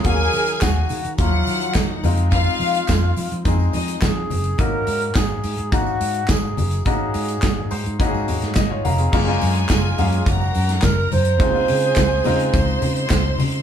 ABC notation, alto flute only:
X:1
M:4/4
L:1/8
Q:1/4=106
K:Abmix
V:1 name="Alto flute"
B2 G2 F2 E2 | F4- F z A2 | B2 A2 G2 A2 | A4 z4 |
z2 F2 G2 B c- | c6- c z |]